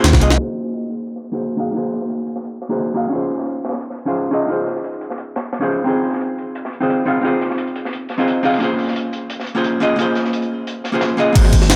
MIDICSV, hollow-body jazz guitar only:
0, 0, Header, 1, 2, 480
1, 0, Start_track
1, 0, Tempo, 342857
1, 538, Time_signature, 4, 2, 24, 8
1, 16463, End_track
2, 0, Start_track
2, 0, Title_t, "Hollow-body jazz guitar"
2, 0, Program_c, 0, 26
2, 0, Note_on_c, 0, 58, 85
2, 0, Note_on_c, 0, 61, 80
2, 0, Note_on_c, 0, 65, 81
2, 0, Note_on_c, 0, 68, 80
2, 0, Note_on_c, 0, 72, 97
2, 262, Note_off_c, 0, 58, 0
2, 267, Note_off_c, 0, 61, 0
2, 272, Note_off_c, 0, 65, 0
2, 277, Note_off_c, 0, 68, 0
2, 277, Note_on_c, 0, 58, 90
2, 282, Note_off_c, 0, 72, 0
2, 287, Note_on_c, 0, 61, 86
2, 298, Note_on_c, 0, 65, 83
2, 306, Note_on_c, 0, 68, 85
2, 316, Note_on_c, 0, 75, 103
2, 486, Note_off_c, 0, 58, 0
2, 502, Note_on_c, 0, 58, 73
2, 506, Note_off_c, 0, 61, 0
2, 511, Note_off_c, 0, 65, 0
2, 515, Note_off_c, 0, 68, 0
2, 520, Note_off_c, 0, 75, 0
2, 522, Note_on_c, 0, 63, 69
2, 541, Note_on_c, 0, 66, 69
2, 561, Note_on_c, 0, 68, 69
2, 581, Note_on_c, 0, 72, 89
2, 1694, Note_off_c, 0, 58, 0
2, 1703, Note_off_c, 0, 63, 0
2, 1713, Note_off_c, 0, 66, 0
2, 1723, Note_off_c, 0, 68, 0
2, 1733, Note_off_c, 0, 72, 0
2, 1845, Note_on_c, 0, 58, 78
2, 1854, Note_on_c, 0, 63, 69
2, 1864, Note_on_c, 0, 66, 70
2, 1873, Note_on_c, 0, 68, 73
2, 1883, Note_on_c, 0, 72, 86
2, 2181, Note_off_c, 0, 58, 0
2, 2185, Note_off_c, 0, 63, 0
2, 2190, Note_off_c, 0, 66, 0
2, 2195, Note_off_c, 0, 68, 0
2, 2196, Note_on_c, 0, 58, 88
2, 2199, Note_off_c, 0, 72, 0
2, 2209, Note_on_c, 0, 63, 78
2, 2217, Note_on_c, 0, 66, 78
2, 2227, Note_on_c, 0, 68, 77
2, 2237, Note_on_c, 0, 77, 94
2, 2400, Note_off_c, 0, 58, 0
2, 2417, Note_on_c, 0, 58, 78
2, 2418, Note_off_c, 0, 63, 0
2, 2431, Note_off_c, 0, 66, 0
2, 2435, Note_on_c, 0, 63, 72
2, 2436, Note_off_c, 0, 68, 0
2, 2441, Note_off_c, 0, 77, 0
2, 2456, Note_on_c, 0, 66, 72
2, 2477, Note_on_c, 0, 68, 75
2, 2495, Note_on_c, 0, 72, 83
2, 3611, Note_off_c, 0, 58, 0
2, 3620, Note_off_c, 0, 63, 0
2, 3630, Note_off_c, 0, 66, 0
2, 3641, Note_off_c, 0, 68, 0
2, 3650, Note_off_c, 0, 72, 0
2, 3769, Note_on_c, 0, 58, 78
2, 3779, Note_on_c, 0, 63, 73
2, 3789, Note_on_c, 0, 66, 74
2, 3797, Note_on_c, 0, 68, 70
2, 3808, Note_on_c, 0, 72, 90
2, 4102, Note_off_c, 0, 58, 0
2, 4108, Note_off_c, 0, 63, 0
2, 4113, Note_off_c, 0, 66, 0
2, 4117, Note_off_c, 0, 68, 0
2, 4117, Note_on_c, 0, 58, 89
2, 4122, Note_off_c, 0, 72, 0
2, 4127, Note_on_c, 0, 63, 76
2, 4138, Note_on_c, 0, 66, 75
2, 4147, Note_on_c, 0, 68, 80
2, 4158, Note_on_c, 0, 77, 100
2, 4329, Note_off_c, 0, 58, 0
2, 4335, Note_on_c, 0, 61, 79
2, 4339, Note_off_c, 0, 63, 0
2, 4351, Note_off_c, 0, 66, 0
2, 4356, Note_off_c, 0, 68, 0
2, 4356, Note_on_c, 0, 63, 72
2, 4361, Note_off_c, 0, 77, 0
2, 4377, Note_on_c, 0, 65, 72
2, 4395, Note_on_c, 0, 68, 68
2, 4414, Note_on_c, 0, 72, 84
2, 5530, Note_off_c, 0, 61, 0
2, 5540, Note_off_c, 0, 63, 0
2, 5551, Note_off_c, 0, 65, 0
2, 5560, Note_off_c, 0, 68, 0
2, 5569, Note_off_c, 0, 72, 0
2, 5686, Note_on_c, 0, 61, 80
2, 5696, Note_on_c, 0, 63, 74
2, 5705, Note_on_c, 0, 65, 77
2, 5716, Note_on_c, 0, 68, 73
2, 5725, Note_on_c, 0, 72, 87
2, 6018, Note_off_c, 0, 61, 0
2, 6026, Note_off_c, 0, 63, 0
2, 6031, Note_off_c, 0, 65, 0
2, 6035, Note_on_c, 0, 61, 89
2, 6036, Note_off_c, 0, 68, 0
2, 6040, Note_off_c, 0, 72, 0
2, 6045, Note_on_c, 0, 63, 84
2, 6056, Note_on_c, 0, 65, 78
2, 6065, Note_on_c, 0, 68, 77
2, 6075, Note_on_c, 0, 75, 97
2, 6239, Note_off_c, 0, 61, 0
2, 6255, Note_on_c, 0, 61, 80
2, 6260, Note_off_c, 0, 63, 0
2, 6270, Note_off_c, 0, 65, 0
2, 6275, Note_off_c, 0, 68, 0
2, 6277, Note_on_c, 0, 63, 71
2, 6280, Note_off_c, 0, 75, 0
2, 6297, Note_on_c, 0, 65, 74
2, 6315, Note_on_c, 0, 68, 72
2, 6335, Note_on_c, 0, 72, 86
2, 7450, Note_off_c, 0, 61, 0
2, 7461, Note_off_c, 0, 63, 0
2, 7471, Note_off_c, 0, 65, 0
2, 7480, Note_off_c, 0, 68, 0
2, 7490, Note_off_c, 0, 72, 0
2, 7848, Note_on_c, 0, 61, 85
2, 7858, Note_on_c, 0, 63, 76
2, 7866, Note_on_c, 0, 65, 80
2, 7878, Note_on_c, 0, 68, 83
2, 7887, Note_on_c, 0, 72, 97
2, 8174, Note_off_c, 0, 61, 0
2, 8180, Note_on_c, 0, 60, 80
2, 8183, Note_off_c, 0, 63, 0
2, 8191, Note_off_c, 0, 65, 0
2, 8197, Note_off_c, 0, 68, 0
2, 8200, Note_on_c, 0, 63, 72
2, 8202, Note_off_c, 0, 72, 0
2, 8219, Note_on_c, 0, 65, 71
2, 8239, Note_on_c, 0, 68, 73
2, 8257, Note_on_c, 0, 72, 83
2, 9372, Note_off_c, 0, 60, 0
2, 9382, Note_off_c, 0, 63, 0
2, 9392, Note_off_c, 0, 65, 0
2, 9402, Note_off_c, 0, 68, 0
2, 9411, Note_off_c, 0, 72, 0
2, 9526, Note_on_c, 0, 60, 79
2, 9536, Note_on_c, 0, 63, 74
2, 9546, Note_on_c, 0, 65, 73
2, 9556, Note_on_c, 0, 68, 71
2, 9565, Note_on_c, 0, 72, 91
2, 9861, Note_off_c, 0, 60, 0
2, 9866, Note_off_c, 0, 63, 0
2, 9871, Note_off_c, 0, 65, 0
2, 9876, Note_off_c, 0, 68, 0
2, 9877, Note_on_c, 0, 60, 89
2, 9881, Note_off_c, 0, 72, 0
2, 9886, Note_on_c, 0, 63, 82
2, 9897, Note_on_c, 0, 65, 77
2, 9906, Note_on_c, 0, 68, 81
2, 9916, Note_on_c, 0, 77, 95
2, 10082, Note_off_c, 0, 60, 0
2, 10099, Note_on_c, 0, 60, 81
2, 10102, Note_off_c, 0, 63, 0
2, 10111, Note_off_c, 0, 65, 0
2, 10116, Note_off_c, 0, 68, 0
2, 10119, Note_on_c, 0, 63, 74
2, 10120, Note_off_c, 0, 77, 0
2, 10138, Note_on_c, 0, 65, 74
2, 10157, Note_on_c, 0, 68, 73
2, 10178, Note_on_c, 0, 72, 83
2, 11292, Note_off_c, 0, 60, 0
2, 11302, Note_off_c, 0, 63, 0
2, 11311, Note_off_c, 0, 65, 0
2, 11321, Note_off_c, 0, 68, 0
2, 11331, Note_off_c, 0, 72, 0
2, 11448, Note_on_c, 0, 60, 81
2, 11455, Note_on_c, 0, 63, 72
2, 11466, Note_on_c, 0, 65, 74
2, 11477, Note_on_c, 0, 68, 73
2, 11488, Note_on_c, 0, 72, 86
2, 11782, Note_off_c, 0, 60, 0
2, 11786, Note_off_c, 0, 63, 0
2, 11791, Note_off_c, 0, 65, 0
2, 11797, Note_off_c, 0, 68, 0
2, 11801, Note_on_c, 0, 60, 87
2, 11802, Note_off_c, 0, 72, 0
2, 11809, Note_on_c, 0, 63, 83
2, 11820, Note_on_c, 0, 65, 83
2, 11829, Note_on_c, 0, 68, 79
2, 11840, Note_on_c, 0, 77, 99
2, 12021, Note_on_c, 0, 58, 76
2, 12023, Note_off_c, 0, 60, 0
2, 12027, Note_off_c, 0, 63, 0
2, 12032, Note_off_c, 0, 65, 0
2, 12037, Note_off_c, 0, 68, 0
2, 12040, Note_on_c, 0, 61, 73
2, 12042, Note_off_c, 0, 77, 0
2, 12060, Note_on_c, 0, 65, 70
2, 12081, Note_on_c, 0, 68, 75
2, 12099, Note_on_c, 0, 72, 87
2, 13213, Note_off_c, 0, 58, 0
2, 13222, Note_off_c, 0, 61, 0
2, 13232, Note_off_c, 0, 65, 0
2, 13243, Note_off_c, 0, 68, 0
2, 13252, Note_off_c, 0, 72, 0
2, 13366, Note_on_c, 0, 58, 81
2, 13378, Note_on_c, 0, 61, 75
2, 13386, Note_on_c, 0, 65, 76
2, 13396, Note_on_c, 0, 68, 70
2, 13407, Note_on_c, 0, 72, 93
2, 13701, Note_off_c, 0, 58, 0
2, 13707, Note_off_c, 0, 61, 0
2, 13711, Note_off_c, 0, 65, 0
2, 13716, Note_off_c, 0, 68, 0
2, 13721, Note_off_c, 0, 72, 0
2, 13723, Note_on_c, 0, 58, 89
2, 13732, Note_on_c, 0, 61, 83
2, 13741, Note_on_c, 0, 65, 83
2, 13752, Note_on_c, 0, 68, 83
2, 13760, Note_on_c, 0, 75, 96
2, 13926, Note_off_c, 0, 58, 0
2, 13943, Note_on_c, 0, 58, 83
2, 13946, Note_off_c, 0, 61, 0
2, 13953, Note_off_c, 0, 65, 0
2, 13958, Note_off_c, 0, 68, 0
2, 13962, Note_on_c, 0, 61, 70
2, 13963, Note_off_c, 0, 75, 0
2, 13983, Note_on_c, 0, 65, 72
2, 14001, Note_on_c, 0, 68, 75
2, 14022, Note_on_c, 0, 72, 94
2, 15134, Note_off_c, 0, 58, 0
2, 15144, Note_off_c, 0, 61, 0
2, 15154, Note_off_c, 0, 65, 0
2, 15163, Note_off_c, 0, 68, 0
2, 15173, Note_off_c, 0, 72, 0
2, 15290, Note_on_c, 0, 58, 80
2, 15302, Note_on_c, 0, 61, 73
2, 15311, Note_on_c, 0, 65, 77
2, 15319, Note_on_c, 0, 68, 78
2, 15330, Note_on_c, 0, 72, 90
2, 15623, Note_off_c, 0, 58, 0
2, 15629, Note_off_c, 0, 61, 0
2, 15634, Note_off_c, 0, 65, 0
2, 15638, Note_off_c, 0, 68, 0
2, 15639, Note_on_c, 0, 58, 86
2, 15643, Note_off_c, 0, 72, 0
2, 15650, Note_on_c, 0, 61, 82
2, 15659, Note_on_c, 0, 65, 81
2, 15668, Note_on_c, 0, 68, 80
2, 15678, Note_on_c, 0, 75, 98
2, 15840, Note_off_c, 0, 58, 0
2, 15856, Note_on_c, 0, 58, 82
2, 15867, Note_off_c, 0, 61, 0
2, 15872, Note_off_c, 0, 65, 0
2, 15876, Note_off_c, 0, 68, 0
2, 15876, Note_on_c, 0, 63, 80
2, 15881, Note_off_c, 0, 75, 0
2, 15894, Note_on_c, 0, 66, 73
2, 15914, Note_on_c, 0, 68, 81
2, 15935, Note_on_c, 0, 72, 97
2, 16463, Note_off_c, 0, 58, 0
2, 16463, Note_off_c, 0, 63, 0
2, 16463, Note_off_c, 0, 66, 0
2, 16463, Note_off_c, 0, 68, 0
2, 16463, Note_off_c, 0, 72, 0
2, 16463, End_track
0, 0, End_of_file